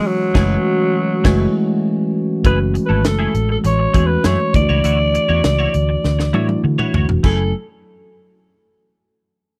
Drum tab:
CC |--x-----x-------|----------------|----------------|x---------------|
HH |----------------|x-x-x-x-x-x-x-x-|x-x-x-x---------|----------------|
SD |--o-----o-------|----o-------o---|----o---oo------|----------------|
T1 |----------------|----------------|----------oo----|----------------|
T2 |----------------|----------------|-------------o--|----------------|
FT |----------------|----------------|--------------oo|----------------|
BD |--o-----o-------|o---------o---o-|----------------|o---------------|